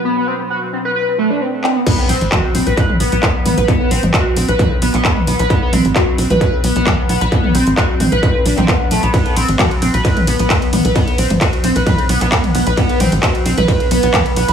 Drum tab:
CC |----------------|x---------------|----------------|----------------|
RD |----------------|----------------|----------------|----------------|
HH |----------------|x-oxx-oxx-oxx-ox|x-oxx-oxx-oxx-ox|x-oxx-oxx-oxx-ox|
CP |--------------x-|----x-------x---|----x------xx---|----x-------x---|
T2 |----------------|----o----o----o-|---o----o----o--|--o----o----o---|
BD |----------------|o---o---o---o---|o---o---o---o---|o---o---o---o---|

CC |----------------|----------------|----------------|----------------|
RD |----------------|xxxxxxxxxxxxxxxx|xxxxxxxxxxxxxxxx|xxxxxxxxxxxxxxxx|
HH |x-oxx-oxx-oxx-ox|x-oxx-oxx-oxx-ox|x-oxx-oxx-oxx-ox|x-oxx-oxx-oxx-ox|
CP |----x------xx---|----x-------x---|----x------xx---|----x-------x---|
T2 |-o----o----o----|----o----o----o-|---o----o----o--|--o----o----o---|
BD |o---o---o---o---|o---o---o---o---|o---o---o---o---|o---o---o---o---|